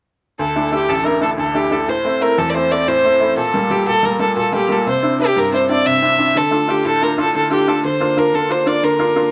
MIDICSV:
0, 0, Header, 1, 3, 480
1, 0, Start_track
1, 0, Key_signature, -1, "minor"
1, 0, Tempo, 331126
1, 571, Time_signature, 9, 3, 24, 8
1, 13503, End_track
2, 0, Start_track
2, 0, Title_t, "Fiddle"
2, 0, Program_c, 0, 110
2, 571, Note_on_c, 0, 69, 69
2, 988, Note_off_c, 0, 69, 0
2, 988, Note_on_c, 0, 69, 54
2, 1055, Note_on_c, 0, 67, 80
2, 1077, Note_off_c, 0, 69, 0
2, 1296, Note_on_c, 0, 69, 84
2, 1318, Note_off_c, 0, 67, 0
2, 1535, Note_on_c, 0, 70, 75
2, 1557, Note_off_c, 0, 69, 0
2, 1766, Note_off_c, 0, 70, 0
2, 1774, Note_on_c, 0, 69, 74
2, 1882, Note_off_c, 0, 69, 0
2, 2022, Note_on_c, 0, 69, 67
2, 2262, Note_on_c, 0, 67, 70
2, 2283, Note_off_c, 0, 69, 0
2, 2499, Note_on_c, 0, 69, 77
2, 2521, Note_off_c, 0, 67, 0
2, 2740, Note_on_c, 0, 72, 75
2, 2762, Note_off_c, 0, 69, 0
2, 3216, Note_on_c, 0, 70, 86
2, 3238, Note_off_c, 0, 72, 0
2, 3453, Note_on_c, 0, 69, 80
2, 3475, Note_off_c, 0, 70, 0
2, 3619, Note_on_c, 0, 74, 53
2, 3640, Note_off_c, 0, 69, 0
2, 3689, Note_on_c, 0, 72, 77
2, 3711, Note_off_c, 0, 74, 0
2, 3935, Note_on_c, 0, 74, 81
2, 3956, Note_off_c, 0, 72, 0
2, 4169, Note_on_c, 0, 72, 86
2, 4190, Note_off_c, 0, 74, 0
2, 4884, Note_off_c, 0, 72, 0
2, 4892, Note_on_c, 0, 69, 73
2, 5376, Note_on_c, 0, 67, 84
2, 5397, Note_off_c, 0, 69, 0
2, 5613, Note_off_c, 0, 67, 0
2, 5619, Note_on_c, 0, 69, 90
2, 5869, Note_on_c, 0, 70, 80
2, 5891, Note_off_c, 0, 69, 0
2, 6089, Note_off_c, 0, 70, 0
2, 6098, Note_on_c, 0, 69, 69
2, 6318, Note_off_c, 0, 69, 0
2, 6338, Note_on_c, 0, 69, 77
2, 6558, Note_off_c, 0, 69, 0
2, 6592, Note_on_c, 0, 67, 78
2, 6757, Note_off_c, 0, 67, 0
2, 6757, Note_on_c, 0, 67, 52
2, 6839, Note_on_c, 0, 69, 85
2, 6860, Note_off_c, 0, 67, 0
2, 7064, Note_off_c, 0, 69, 0
2, 7082, Note_on_c, 0, 72, 71
2, 7514, Note_off_c, 0, 72, 0
2, 7547, Note_on_c, 0, 67, 84
2, 7800, Note_on_c, 0, 70, 94
2, 7822, Note_off_c, 0, 67, 0
2, 8019, Note_off_c, 0, 70, 0
2, 8028, Note_on_c, 0, 72, 70
2, 8242, Note_off_c, 0, 72, 0
2, 8261, Note_on_c, 0, 74, 93
2, 8496, Note_on_c, 0, 76, 91
2, 8518, Note_off_c, 0, 74, 0
2, 9233, Note_on_c, 0, 69, 79
2, 9255, Note_off_c, 0, 76, 0
2, 9714, Note_on_c, 0, 67, 84
2, 9736, Note_off_c, 0, 69, 0
2, 9941, Note_off_c, 0, 67, 0
2, 9951, Note_on_c, 0, 69, 85
2, 10187, Note_on_c, 0, 70, 74
2, 10209, Note_off_c, 0, 69, 0
2, 10418, Note_off_c, 0, 70, 0
2, 10444, Note_on_c, 0, 69, 85
2, 10651, Note_off_c, 0, 69, 0
2, 10671, Note_on_c, 0, 69, 81
2, 10884, Note_off_c, 0, 69, 0
2, 10901, Note_on_c, 0, 67, 73
2, 11139, Note_on_c, 0, 69, 77
2, 11160, Note_off_c, 0, 67, 0
2, 11374, Note_off_c, 0, 69, 0
2, 11382, Note_on_c, 0, 72, 72
2, 11860, Note_on_c, 0, 70, 78
2, 11882, Note_off_c, 0, 72, 0
2, 12104, Note_on_c, 0, 69, 77
2, 12125, Note_off_c, 0, 70, 0
2, 12338, Note_on_c, 0, 72, 72
2, 12360, Note_off_c, 0, 69, 0
2, 12566, Note_on_c, 0, 74, 81
2, 12588, Note_off_c, 0, 72, 0
2, 12813, Note_on_c, 0, 70, 81
2, 12834, Note_off_c, 0, 74, 0
2, 13503, Note_off_c, 0, 70, 0
2, 13503, End_track
3, 0, Start_track
3, 0, Title_t, "Upright piano"
3, 0, Program_c, 1, 0
3, 571, Note_on_c, 1, 38, 61
3, 806, Note_on_c, 1, 57, 43
3, 812, Note_on_c, 1, 62, 43
3, 814, Note_on_c, 1, 64, 45
3, 1019, Note_off_c, 1, 57, 0
3, 1028, Note_off_c, 1, 62, 0
3, 1032, Note_off_c, 1, 64, 0
3, 1041, Note_on_c, 1, 57, 45
3, 1050, Note_on_c, 1, 62, 36
3, 1054, Note_on_c, 1, 64, 46
3, 1291, Note_on_c, 1, 33, 58
3, 1493, Note_off_c, 1, 57, 0
3, 1498, Note_off_c, 1, 62, 0
3, 1499, Note_off_c, 1, 64, 0
3, 1514, Note_on_c, 1, 57, 44
3, 1519, Note_on_c, 1, 62, 36
3, 1521, Note_on_c, 1, 64, 47
3, 1734, Note_off_c, 1, 57, 0
3, 1736, Note_off_c, 1, 62, 0
3, 1744, Note_off_c, 1, 64, 0
3, 1755, Note_on_c, 1, 57, 47
3, 1758, Note_on_c, 1, 62, 45
3, 1766, Note_on_c, 1, 64, 53
3, 1975, Note_off_c, 1, 38, 0
3, 1996, Note_on_c, 1, 38, 56
3, 2218, Note_off_c, 1, 57, 0
3, 2226, Note_off_c, 1, 62, 0
3, 2231, Note_off_c, 1, 64, 0
3, 2239, Note_on_c, 1, 57, 43
3, 2248, Note_on_c, 1, 62, 40
3, 2252, Note_on_c, 1, 64, 45
3, 2455, Note_off_c, 1, 57, 0
3, 2460, Note_off_c, 1, 62, 0
3, 2464, Note_off_c, 1, 64, 0
3, 2477, Note_on_c, 1, 57, 43
3, 2481, Note_on_c, 1, 62, 44
3, 2485, Note_on_c, 1, 64, 48
3, 2688, Note_off_c, 1, 33, 0
3, 2702, Note_off_c, 1, 38, 0
3, 2717, Note_off_c, 1, 57, 0
3, 2719, Note_off_c, 1, 62, 0
3, 2721, Note_off_c, 1, 64, 0
3, 2729, Note_on_c, 1, 45, 57
3, 2967, Note_on_c, 1, 57, 44
3, 2969, Note_on_c, 1, 60, 40
3, 2974, Note_on_c, 1, 64, 46
3, 3182, Note_off_c, 1, 57, 0
3, 3193, Note_off_c, 1, 60, 0
3, 3199, Note_off_c, 1, 64, 0
3, 3204, Note_on_c, 1, 57, 46
3, 3215, Note_on_c, 1, 60, 38
3, 3220, Note_on_c, 1, 64, 47
3, 3451, Note_on_c, 1, 40, 57
3, 3669, Note_off_c, 1, 57, 0
3, 3673, Note_off_c, 1, 60, 0
3, 3680, Note_off_c, 1, 64, 0
3, 3690, Note_on_c, 1, 57, 45
3, 3695, Note_on_c, 1, 60, 40
3, 3702, Note_on_c, 1, 64, 44
3, 3900, Note_off_c, 1, 57, 0
3, 3911, Note_off_c, 1, 60, 0
3, 3912, Note_off_c, 1, 64, 0
3, 3922, Note_on_c, 1, 57, 47
3, 3933, Note_on_c, 1, 60, 38
3, 3934, Note_on_c, 1, 64, 53
3, 4151, Note_off_c, 1, 45, 0
3, 4172, Note_on_c, 1, 45, 61
3, 4390, Note_off_c, 1, 57, 0
3, 4393, Note_off_c, 1, 60, 0
3, 4398, Note_off_c, 1, 64, 0
3, 4412, Note_on_c, 1, 57, 45
3, 4414, Note_on_c, 1, 60, 44
3, 4427, Note_on_c, 1, 64, 42
3, 4625, Note_off_c, 1, 57, 0
3, 4631, Note_off_c, 1, 60, 0
3, 4640, Note_off_c, 1, 64, 0
3, 4647, Note_on_c, 1, 57, 44
3, 4653, Note_on_c, 1, 60, 41
3, 4662, Note_on_c, 1, 64, 50
3, 4848, Note_off_c, 1, 40, 0
3, 4870, Note_off_c, 1, 45, 0
3, 4882, Note_off_c, 1, 57, 0
3, 4885, Note_off_c, 1, 60, 0
3, 4888, Note_on_c, 1, 46, 55
3, 4889, Note_off_c, 1, 64, 0
3, 5130, Note_on_c, 1, 55, 50
3, 5139, Note_on_c, 1, 57, 40
3, 5140, Note_on_c, 1, 58, 51
3, 5342, Note_off_c, 1, 55, 0
3, 5349, Note_off_c, 1, 57, 0
3, 5357, Note_off_c, 1, 58, 0
3, 5364, Note_on_c, 1, 55, 47
3, 5371, Note_on_c, 1, 57, 37
3, 5379, Note_on_c, 1, 58, 45
3, 5587, Note_off_c, 1, 46, 0
3, 5609, Note_on_c, 1, 46, 58
3, 5819, Note_off_c, 1, 55, 0
3, 5819, Note_off_c, 1, 57, 0
3, 5832, Note_off_c, 1, 58, 0
3, 5840, Note_on_c, 1, 55, 47
3, 5841, Note_on_c, 1, 57, 39
3, 5854, Note_on_c, 1, 58, 44
3, 6057, Note_off_c, 1, 55, 0
3, 6066, Note_off_c, 1, 57, 0
3, 6071, Note_off_c, 1, 58, 0
3, 6078, Note_on_c, 1, 55, 50
3, 6087, Note_on_c, 1, 57, 44
3, 6093, Note_on_c, 1, 58, 51
3, 6306, Note_off_c, 1, 46, 0
3, 6328, Note_on_c, 1, 46, 65
3, 6538, Note_off_c, 1, 55, 0
3, 6544, Note_off_c, 1, 57, 0
3, 6549, Note_off_c, 1, 58, 0
3, 6560, Note_on_c, 1, 55, 43
3, 6566, Note_on_c, 1, 57, 41
3, 6570, Note_on_c, 1, 58, 43
3, 6775, Note_off_c, 1, 55, 0
3, 6782, Note_off_c, 1, 57, 0
3, 6784, Note_off_c, 1, 58, 0
3, 6797, Note_on_c, 1, 55, 43
3, 6804, Note_on_c, 1, 57, 42
3, 6806, Note_on_c, 1, 58, 55
3, 7027, Note_off_c, 1, 46, 0
3, 7036, Note_off_c, 1, 55, 0
3, 7040, Note_off_c, 1, 57, 0
3, 7041, Note_off_c, 1, 58, 0
3, 7057, Note_on_c, 1, 48, 56
3, 7282, Note_on_c, 1, 60, 41
3, 7291, Note_on_c, 1, 62, 40
3, 7293, Note_on_c, 1, 64, 49
3, 7507, Note_off_c, 1, 60, 0
3, 7513, Note_off_c, 1, 62, 0
3, 7514, Note_off_c, 1, 64, 0
3, 7529, Note_on_c, 1, 60, 39
3, 7534, Note_on_c, 1, 62, 43
3, 7536, Note_on_c, 1, 64, 45
3, 7771, Note_on_c, 1, 43, 58
3, 7987, Note_off_c, 1, 60, 0
3, 7993, Note_off_c, 1, 62, 0
3, 7998, Note_off_c, 1, 64, 0
3, 8008, Note_on_c, 1, 60, 40
3, 8014, Note_on_c, 1, 62, 40
3, 8022, Note_on_c, 1, 64, 52
3, 8229, Note_off_c, 1, 60, 0
3, 8232, Note_off_c, 1, 62, 0
3, 8240, Note_off_c, 1, 64, 0
3, 8250, Note_on_c, 1, 60, 43
3, 8254, Note_on_c, 1, 62, 41
3, 8262, Note_on_c, 1, 64, 52
3, 8468, Note_off_c, 1, 48, 0
3, 8490, Note_on_c, 1, 48, 57
3, 8711, Note_off_c, 1, 60, 0
3, 8712, Note_off_c, 1, 62, 0
3, 8721, Note_off_c, 1, 64, 0
3, 8733, Note_on_c, 1, 60, 43
3, 8733, Note_on_c, 1, 62, 38
3, 8746, Note_on_c, 1, 64, 48
3, 8946, Note_off_c, 1, 60, 0
3, 8949, Note_off_c, 1, 62, 0
3, 8960, Note_off_c, 1, 64, 0
3, 8968, Note_on_c, 1, 60, 42
3, 8971, Note_on_c, 1, 62, 40
3, 8982, Note_on_c, 1, 64, 47
3, 9167, Note_off_c, 1, 43, 0
3, 9188, Note_off_c, 1, 48, 0
3, 9201, Note_off_c, 1, 60, 0
3, 9203, Note_off_c, 1, 62, 0
3, 9208, Note_off_c, 1, 64, 0
3, 9212, Note_on_c, 1, 50, 64
3, 9439, Note_on_c, 1, 57, 49
3, 9446, Note_on_c, 1, 62, 41
3, 9453, Note_on_c, 1, 65, 44
3, 9660, Note_off_c, 1, 57, 0
3, 9662, Note_off_c, 1, 62, 0
3, 9671, Note_off_c, 1, 65, 0
3, 9681, Note_on_c, 1, 57, 47
3, 9683, Note_on_c, 1, 62, 38
3, 9692, Note_on_c, 1, 65, 52
3, 9931, Note_on_c, 1, 45, 59
3, 10150, Note_off_c, 1, 57, 0
3, 10151, Note_off_c, 1, 62, 0
3, 10156, Note_off_c, 1, 65, 0
3, 10174, Note_on_c, 1, 57, 38
3, 10179, Note_on_c, 1, 62, 36
3, 10185, Note_on_c, 1, 65, 45
3, 10384, Note_off_c, 1, 57, 0
3, 10386, Note_off_c, 1, 62, 0
3, 10389, Note_off_c, 1, 65, 0
3, 10406, Note_on_c, 1, 57, 43
3, 10408, Note_on_c, 1, 62, 39
3, 10410, Note_on_c, 1, 65, 55
3, 10631, Note_off_c, 1, 50, 0
3, 10653, Note_on_c, 1, 50, 54
3, 10858, Note_off_c, 1, 57, 0
3, 10866, Note_off_c, 1, 62, 0
3, 10870, Note_off_c, 1, 65, 0
3, 10880, Note_on_c, 1, 57, 43
3, 10888, Note_on_c, 1, 62, 36
3, 10892, Note_on_c, 1, 65, 50
3, 11102, Note_off_c, 1, 57, 0
3, 11106, Note_off_c, 1, 62, 0
3, 11112, Note_off_c, 1, 65, 0
3, 11123, Note_on_c, 1, 57, 43
3, 11128, Note_on_c, 1, 62, 40
3, 11134, Note_on_c, 1, 65, 53
3, 11327, Note_off_c, 1, 45, 0
3, 11349, Note_off_c, 1, 50, 0
3, 11359, Note_off_c, 1, 57, 0
3, 11361, Note_off_c, 1, 62, 0
3, 11364, Note_off_c, 1, 65, 0
3, 11371, Note_on_c, 1, 50, 65
3, 11600, Note_on_c, 1, 58, 48
3, 11607, Note_on_c, 1, 62, 41
3, 11613, Note_on_c, 1, 65, 56
3, 11817, Note_off_c, 1, 58, 0
3, 11824, Note_off_c, 1, 62, 0
3, 11826, Note_off_c, 1, 65, 0
3, 11839, Note_on_c, 1, 58, 45
3, 11845, Note_on_c, 1, 62, 41
3, 11848, Note_on_c, 1, 65, 50
3, 12064, Note_off_c, 1, 50, 0
3, 12086, Note_on_c, 1, 50, 61
3, 12291, Note_off_c, 1, 58, 0
3, 12296, Note_off_c, 1, 62, 0
3, 12304, Note_off_c, 1, 65, 0
3, 12313, Note_on_c, 1, 58, 44
3, 12318, Note_on_c, 1, 62, 42
3, 12326, Note_on_c, 1, 65, 51
3, 12530, Note_off_c, 1, 58, 0
3, 12538, Note_off_c, 1, 62, 0
3, 12544, Note_off_c, 1, 65, 0
3, 12552, Note_on_c, 1, 58, 48
3, 12560, Note_on_c, 1, 62, 41
3, 12566, Note_on_c, 1, 65, 49
3, 12779, Note_off_c, 1, 50, 0
3, 12801, Note_on_c, 1, 50, 58
3, 13010, Note_off_c, 1, 58, 0
3, 13016, Note_off_c, 1, 62, 0
3, 13018, Note_off_c, 1, 65, 0
3, 13031, Note_on_c, 1, 58, 45
3, 13038, Note_on_c, 1, 62, 42
3, 13040, Note_on_c, 1, 65, 54
3, 13256, Note_off_c, 1, 58, 0
3, 13256, Note_off_c, 1, 62, 0
3, 13261, Note_off_c, 1, 65, 0
3, 13278, Note_on_c, 1, 58, 45
3, 13278, Note_on_c, 1, 62, 38
3, 13283, Note_on_c, 1, 65, 53
3, 13503, Note_off_c, 1, 50, 0
3, 13503, Note_off_c, 1, 58, 0
3, 13503, Note_off_c, 1, 62, 0
3, 13503, Note_off_c, 1, 65, 0
3, 13503, End_track
0, 0, End_of_file